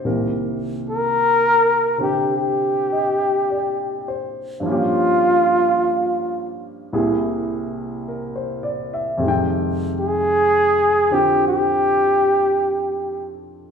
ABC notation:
X:1
M:4/4
L:1/16
Q:"Swing" 1/4=53
K:Cm
V:1 name="Flugelhorn"
z2 B4 G2 G6 z2 | F6 z8 z2 | z2 A4 G2 G6 z2 |]
V:2 name="Grand piano"
c z8 z e2 d2 c2- | c z8 z3 B c d =e | z16 |]
V:3 name="Grand piano"
[C,,C,E,B,B]6 [C,D,CG]8- [C,D,CG]2 | [G,,F,B,_DG]8 [C,,C,B,=EA]8 | [F,,C,E,A,g]6 [D,CFG]8- [D,CFG]2 |]